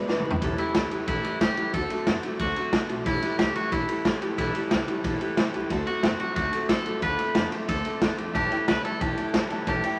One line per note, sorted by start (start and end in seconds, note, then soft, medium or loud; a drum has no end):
0.07 0.23 G#1 loud
0.07 0.23 E2 medium
0.07 0.24 C#3 medium
0.07 0.24 E3 loud
0.07 0.25 G#3 medium
0.07 0.25 D4 medium
0.07 0.25 E4 medium
0.07 0.23 B4 medium
0.07 snare medium
0.19 mid tom medium
0.24 0.40 G#1 loud
0.24 0.40 E2 medium
0.24 0.40 B2 medium
0.24 0.42 D4 medium
0.24 0.42 E4 medium
0.24 0.41 B4 medium
0.31 floor tom loud
0.41 0.56 A1 loud
0.41 0.58 A2 medium
0.41 0.56 A2 medium
0.41 0.58 E3 medium
0.41 0.57 E3 medium
0.41 0.58 G3 medium
0.41 0.59 C#4 loud
0.41 0.58 G4 medium
0.41 0.57 A4 loud
0.41 kick loud
0.41 ride medium
0.58 0.73 A2 medium
0.58 0.73 E3 loud
0.58 0.74 G3 soft
0.58 0.74 C#4 medium
0.58 1.07 E4 medium
0.58 0.75 G4 medium
0.58 0.75 A4 medium
0.58 muted upright bass stroke medium
0.58 ride medium
0.74 0.89 C#2 medium
0.74 0.91 A2 medium
0.74 0.89 A2 medium
0.74 0.91 E3 medium
0.74 0.90 F#3 medium
0.74 0.91 G3 medium
0.74 0.92 C#4 medium
0.74 0.91 G4 medium
0.74 0.90 A4 loud
0.74 snare loud
0.74 ride loud
0.91 1.06 A2 medium
0.91 1.06 E3 medium
0.91 1.06 G3 soft
0.91 1.07 C#4 medium
0.91 1.08 G4 medium
0.91 1.08 A4 medium
0.91 muted upright bass stroke medium
0.91 ride medium
1.07 1.22 A1 medium
1.07 1.22 A2 medium
1.07 1.23 E3 medium
1.07 1.24 G3 medium
1.07 1.24 C#4 medium
1.07 1.41 E4 medium
1.07 1.23 G4 medium
1.07 1.22 A4 medium
1.07 kick loud
1.07 ride medium
1.24 1.39 A2 medium
1.24 1.39 E3 medium
1.24 1.40 G3 soft
1.24 1.40 C#4 soft
1.24 1.41 G4 soft
1.24 1.40 A4 medium
1.24 muted upright bass stroke medium
1.24 ride medium
1.40 1.55 C#2 loud
1.40 1.57 A2 medium
1.40 1.55 A2 medium
1.40 1.57 E3 medium
1.40 1.56 F#3 medium
1.40 1.57 G3 medium
1.40 1.57 C#4 medium
1.40 1.72 G4 loud
1.40 1.57 G4 medium
1.40 1.56 A4 medium
1.40 kick medium
1.40 snare loud
1.40 ride loud
1.57 1.72 C#2 medium
1.57 1.72 A2 medium
1.57 1.72 E3 medium
1.57 1.74 G3 soft
1.57 1.74 C#4 soft
1.57 1.74 G4 medium
1.57 1.74 A4 medium
1.57 ride medium
1.73 1.88 D2 loud
1.73 1.88 D3 medium
1.73 1.90 D3 medium
1.73 1.89 A3 medium
1.73 1.90 A3 medium
1.73 1.91 C4 medium
1.73 1.91 F#4 medium
1.73 2.20 A4 loud
1.73 1.89 A4 medium
1.73 kick loud
1.73 ride medium
1.89 2.05 D3 medium
1.89 2.05 A3 medium
1.89 2.06 C4 medium
1.89 2.07 F#4 medium
1.89 2.07 A4 medium
1.89 ride medium
2.07 2.21 F#2 medium
2.07 2.23 D3 medium
2.07 2.22 D3 medium
2.07 2.24 A3 medium
2.07 2.22 B3 medium
2.07 2.24 C4 medium
2.07 2.23 F#4 medium
2.07 2.22 A4 medium
2.07 snare loud
2.07 ride medium
2.23 2.38 D3 medium
2.23 2.38 A3 medium
2.23 2.39 C4 soft
2.23 2.40 F#4 medium
2.23 2.40 A4 medium
2.23 ride medium
2.39 2.54 D2 loud
2.39 2.55 D3 medium
2.39 2.56 A3 medium
2.39 2.55 A3 medium
2.39 2.57 C4 medium
2.39 2.86 F#4 loud
2.39 2.56 F#4 medium
2.39 2.55 A4 medium
2.39 kick loud
2.39 ride medium
2.56 2.71 D3 medium
2.56 2.72 A3 medium
2.56 2.73 C4 soft
2.56 2.73 F#4 medium
2.56 2.73 A4 medium
2.56 ride medium
2.73 2.87 F#2 loud
2.73 2.89 D3 medium
2.73 2.88 D3 medium
2.73 2.90 A3 medium
2.73 2.88 B3 medium
2.73 2.90 C4 medium
2.73 2.89 F#4 medium
2.73 2.87 A4 medium
2.73 kick medium
2.73 snare loud
2.73 ride medium
2.89 3.04 B1 loud
2.89 3.04 D3 medium
2.89 3.05 A3 medium
2.89 3.06 C4 medium
2.89 3.06 F#4 medium
2.89 3.06 A4 medium
2.89 ride medium
3.06 3.20 A1 loud
3.06 3.22 A2 medium
3.06 3.21 A2 medium
3.06 3.23 E3 medium
3.06 3.21 E3 medium
3.06 3.23 G3 medium
3.06 3.23 C#4 medium
3.06 3.38 E4 loud
3.06 3.22 G4 medium
3.06 3.21 A4 medium
3.06 kick loud
3.06 snare soft
3.06 ride medium
3.22 3.37 A2 medium
3.22 3.38 E3 medium
3.22 3.38 G3 medium
3.22 3.39 C#4 medium
3.22 3.39 G4 medium
3.22 3.39 A4 medium
3.22 muted upright bass stroke medium
3.22 snare soft
3.22 ride medium
3.38 3.54 C#2 medium
3.38 3.55 A2 medium
3.38 3.54 A2 medium
3.38 3.55 E3 medium
3.38 3.54 F#3 loud
3.38 3.56 G3 medium
3.38 3.55 C#4 medium
3.38 3.55 G4 medium
3.38 3.53 A4 medium
3.38 snare loud
3.38 ride medium
3.55 3.70 A2 medium
3.55 3.71 E3 medium
3.55 3.70 G3 medium
3.55 3.71 C#4 soft
3.55 3.73 F#4 medium
3.55 3.72 G4 medium
3.55 3.72 A4 medium
3.55 muted upright bass stroke medium
3.55 ride medium
3.71 3.87 A1 medium
3.71 3.87 A2 medium
3.71 3.87 E3 loud
3.71 3.88 G3 medium
3.71 3.89 C#4 medium
3.71 4.37 E4 medium
3.71 3.88 G4 medium
3.71 3.87 A4 medium
3.71 kick loud
3.71 ride medium
3.88 4.03 A2 medium
3.88 4.04 E3 medium
3.88 4.04 G3 soft
3.88 4.04 C#4 soft
3.88 4.05 G4 medium
3.88 4.05 A4 soft
3.88 ride medium
4.04 4.20 C#2 loud
4.04 4.21 A2 medium
4.04 4.20 A2 medium
4.04 4.21 E3 medium
4.04 4.20 F#3 medium
4.04 4.22 G3 medium
4.04 4.21 C#4 medium
4.04 4.20 G4 medium
4.04 4.19 A4 medium
4.04 kick medium
4.04 snare loud
4.04 ride medium
4.20 4.36 C#2 medium
4.20 4.36 A2 medium
4.20 4.37 E3 medium
4.20 4.37 G3 medium
4.20 4.37 C#4 medium
4.20 4.38 G4 medium
4.20 4.37 A4 medium
4.20 ride medium
4.37 4.53 A1 loud
4.37 4.54 A2 medium
4.37 4.53 A2 medium
4.37 4.54 E3 medium
4.37 4.53 E3 medium
4.37 4.55 G3 medium
4.37 4.55 C#4 medium
4.37 4.84 E4 medium
4.37 4.54 G4 medium
4.37 4.53 A4 loud
4.37 kick loud
4.37 snare soft
4.37 ride medium
4.54 4.69 A2 medium
4.54 4.70 E3 medium
4.54 4.71 G3 medium
4.54 4.71 C#4 soft
4.54 4.71 G4 medium
4.54 4.71 A4 medium
4.54 muted upright bass stroke medium
4.54 ride medium
4.71 4.86 C#2 medium
4.71 4.86 A2 medium
4.71 4.88 A2 medium
4.71 4.88 E3 medium
4.71 4.86 F#3 loud
4.71 4.88 G3 medium
4.71 4.88 C#4 medium
4.71 4.87 G4 medium
4.71 4.86 A4 medium
4.71 snare loud
4.71 ride medium
4.87 5.02 A2 medium
4.87 5.03 E3 medium
4.87 5.02 G3 soft
4.87 5.03 C#4 medium
4.87 5.04 G4 medium
4.87 5.04 A4 medium
4.87 muted upright bass stroke medium
4.87 ride medium
5.03 5.19 A1 medium
5.03 5.19 A2 medium
5.03 5.19 E3 medium
5.03 5.20 G3 medium
5.03 5.21 C#4 medium
5.03 5.20 G4 medium
5.03 5.19 A4 medium
5.03 kick loud
5.03 ride medium
5.20 5.35 A2 medium
5.20 5.36 E3 loud
5.20 5.36 G3 medium
5.20 5.37 C#4 medium
5.20 5.37 G4 medium
5.20 5.37 A4 medium
5.20 ride medium
5.37 5.52 C#2 loud
5.37 5.53 A2 medium
5.37 5.52 A2 medium
5.37 5.54 E3 medium
5.37 5.52 F#3 medium
5.37 5.54 G3 medium
5.37 5.53 C#4 medium
5.37 5.53 G4 medium
5.37 5.52 A4 medium
5.37 snare loud
5.37 ride medium
5.53 5.69 C#2 medium
5.53 5.69 A2 medium
5.53 5.69 E3 medium
5.53 5.70 G3 medium
5.53 5.70 C#4 medium
5.53 5.70 G4 medium
5.53 5.70 A4 medium
5.53 ride medium
5.70 5.85 D2 loud
5.70 5.87 D3 loud
5.70 5.85 D3 medium
5.70 5.87 A3 medium
5.70 5.85 A3 loud
5.70 5.87 C4 medium
5.70 5.87 F#4 medium
5.70 5.85 A4 medium
5.70 kick loud
5.70 snare soft
5.70 ride medium
5.86 6.02 D3 medium
5.86 6.02 A3 medium
5.86 6.03 C4 medium
5.86 6.19 F#4 medium
5.86 6.04 F#4 medium
5.86 6.03 A4 medium
5.86 ride medium
6.03 6.18 F#2 medium
6.03 6.20 D3 medium
6.03 6.18 D3 medium
6.03 6.20 A3 medium
6.03 6.19 B3 loud
6.03 6.20 C4 medium
6.03 6.19 F#4 medium
6.03 6.18 A4 medium
6.03 snare loud
6.03 ride medium
6.19 6.35 D3 medium
6.19 6.35 A3 medium
6.19 6.36 C4 soft
6.19 6.35 F#4 medium
6.19 6.36 F#4 medium
6.19 6.36 A4 soft
6.19 muted upright bass stroke medium
6.19 ride medium
6.36 6.51 D2 medium
6.36 6.52 D3 medium
6.36 6.53 A3 medium
6.36 6.52 A3 medium
6.36 6.53 C4 medium
6.36 6.69 F#4 medium
6.36 6.53 F#4 medium
6.36 6.51 A4 medium
6.36 kick loud
6.36 snare soft
6.36 ride medium
6.52 6.68 D3 medium
6.52 6.68 A3 medium
6.52 6.69 C4 soft
6.52 6.69 F#4 soft
6.52 6.69 A4 medium
6.52 muted upright bass stroke medium
6.52 ride medium
6.69 6.84 F#2 loud
6.69 6.86 D3 medium
6.69 6.84 D3 medium
6.69 6.86 A3 medium
6.69 6.85 B3 medium
6.69 6.86 C4 medium
6.69 6.86 F#4 medium
6.69 7.02 A4 loud
6.69 6.85 A4 medium
6.69 kick medium
6.69 snare loud
6.69 ride medium
6.86 7.01 F#2 medium
6.86 7.01 D3 medium
6.86 7.01 A3 medium
6.86 7.02 C4 soft
6.86 7.03 F#4 soft
6.86 7.02 A4 medium
6.86 ride medium
7.02 7.17 D2 loud
7.02 7.19 D3 medium
7.02 7.17 D3 medium
7.02 7.19 A3 medium
7.02 7.18 A3 medium
7.02 7.19 C4 medium
7.02 7.19 F4 medium
7.02 7.17 A4 medium
7.02 7.49 B4 loud
7.02 kick loud
7.02 ride medium
7.18 7.34 D3 medium
7.18 7.34 A3 medium
7.18 7.35 C4 soft
7.18 7.36 F4 medium
7.18 7.35 A4 medium
7.18 ride medium
7.35 7.50 F2 medium
7.35 7.52 D3 medium
7.35 7.50 D3 medium
7.35 7.52 A3 medium
7.35 7.51 B3 medium
7.35 7.53 C4 medium
7.35 7.52 F4 medium
7.35 7.51 A4 loud
7.35 snare loud
7.35 ride loud
7.51 7.67 D3 medium
7.51 7.67 A3 medium
7.51 7.68 C4 medium
7.51 7.68 F4 medium
7.51 7.69 A4 medium
7.51 snare soft
7.51 ride medium
7.68 7.83 D2 medium
7.68 7.83 D3 medium
7.68 7.85 A3 medium
7.68 7.83 A3 loud
7.68 7.85 C4 medium
7.68 7.85 F4 medium
7.68 8.15 A4 loud
7.68 7.83 A4 medium
7.68 kick loud
7.68 snare soft
7.68 ride medium
7.84 8.00 D3 medium
7.84 8.00 A3 medium
7.84 8.02 C4 soft
7.84 8.02 F4 soft
7.84 8.01 A4 medium
7.84 ride medium
8.01 8.16 F2 medium
8.01 8.16 D3 medium
8.01 8.18 D3 medium
8.01 8.19 A3 medium
8.01 8.17 B3 loud
8.01 8.19 C4 medium
8.01 8.18 F4 medium
8.01 8.17 A4 medium
8.01 kick medium
8.01 snare loud
8.01 ride medium
8.18 8.33 F2 loud
8.18 8.33 D3 medium
8.18 8.33 A3 medium
8.18 8.35 C4 medium
8.18 8.35 F4 medium
8.18 8.35 A4 medium
8.18 ride medium
8.34 8.50 A1 medium
8.34 8.51 A2 medium
8.34 8.50 A2 medium
8.34 8.51 E3 medium
8.34 8.50 E3 medium
8.34 8.52 G3 medium
8.34 8.51 C#4 medium
8.34 8.51 E4 medium
8.34 8.68 G4 loud
8.34 8.50 A4 medium
8.34 8.44 C#5 medium
8.34 8.45 E5 medium
8.34 8.45 A5 loud
8.34 kick loud
8.34 ride medium
8.51 8.66 A2 medium
8.51 8.66 E3 medium
8.51 8.67 G3 soft
8.51 8.68 C#4 medium
8.51 8.68 E4 medium
8.51 8.68 A4 medium
8.51 8.61 C#5 medium
8.51 8.61 E5 medium
8.51 8.62 G5 loud
8.51 muted upright bass stroke medium
8.51 ride medium
8.68 8.83 C#2 medium
8.68 8.84 A2 medium
8.68 8.83 A2 medium
8.68 8.85 E3 medium
8.68 8.83 F#3 loud
8.68 8.85 G3 medium
8.68 8.85 C#4 medium
8.68 8.84 E4 medium
8.68 8.83 A4 medium
8.68 8.84 B4 loud
8.68 8.78 C#5 medium
8.68 8.78 E5 medium
8.68 8.78 A5 medium
8.68 snare loud
8.68 ride medium
8.84 8.99 A2 medium
8.84 8.99 E3 medium
8.84 8.99 G3 soft
8.84 9.00 C#4 soft
8.84 9.01 E4 soft
8.84 9.01 A4 medium
8.84 8.94 C#5 medium
8.84 8.94 E5 medium
8.84 8.95 A5 medium
8.84 muted upright bass stroke medium
8.84 ride medium
9.00 9.16 A1 loud
9.00 9.16 A2 medium
9.00 9.16 E3 loud
9.00 9.17 G3 medium
9.00 9.18 C#4 medium
9.00 9.17 E4 medium
9.00 9.67 G4 medium
9.00 9.16 A4 medium
9.00 9.11 C#5 medium
9.00 9.11 E5 medium
9.00 9.11 A5 medium
9.00 kick loud
9.00 ride medium
9.17 9.32 A2 medium
9.17 9.33 E3 medium
9.17 9.33 G3 soft
9.17 9.34 C#4 soft
9.17 9.34 E4 medium
9.17 9.34 A4 medium
9.17 9.27 C#5 medium
9.17 9.28 E5 medium
9.17 9.28 A5 medium
9.17 muted upright bass stroke medium
9.17 ride medium
9.33 9.49 C#2 loud
9.33 9.51 A2 medium
9.33 9.49 A2 medium
9.33 9.51 E3 medium
9.33 9.49 F#3 medium
9.33 9.51 G3 medium
9.33 9.51 C#4 medium
9.33 9.50 E4 medium
9.33 9.49 A4 medium
9.33 9.44 C#5 medium
9.33 9.44 E5 medium
9.33 9.44 A5 loud
9.33 kick medium
9.33 snare loud
9.33 ride medium
9.50 9.66 C#2 medium
9.50 9.66 A2 medium
9.50 9.66 E3 medium
9.50 9.66 G3 medium
9.50 9.67 C#4 medium
9.50 9.67 E4 medium
9.50 9.67 A4 medium
9.50 9.61 C#5 medium
9.50 9.61 E5 medium
9.50 9.61 A5 loud
9.50 ride medium
9.67 9.82 A1 loud
9.67 9.84 A2 medium
9.67 9.82 A2 medium
9.67 9.84 E3 medium
9.67 9.82 E3 medium
9.67 9.84 G3 medium
9.67 9.84 C#4 medium
9.67 9.83 E4 medium
9.67 9.99 G4 medium
9.67 9.82 A4 medium
9.67 9.77 C#5 medium
9.67 9.77 E5 medium
9.67 9.78 A5 loud
9.67 kick loud
9.67 ride medium
9.83 9.99 A2 medium
9.83 9.99 E3 medium
9.83 9.99 G3 soft
9.83 9.99 C#4 soft
9.83 9.99 E4 medium
9.83 9.99 A4 medium
9.83 9.94 C#5 loud
9.83 9.94 E5 medium
9.83 9.94 G5 loud
9.83 muted upright bass stroke medium
9.83 ride medium